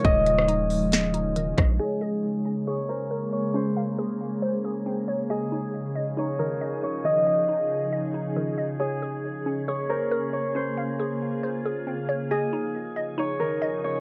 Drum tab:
HH |x-x-x-o-x-x-x-x-|----------------|----------------|----------------|
SD |---r----o-----r-|----------------|----------------|----------------|
BD |o-------------o-|----------------|----------------|----------------|

HH |----------------|----------------|----------------|----------------|
SD |----------------|----------------|----------------|----------------|
BD |----------------|----------------|----------------|----------------|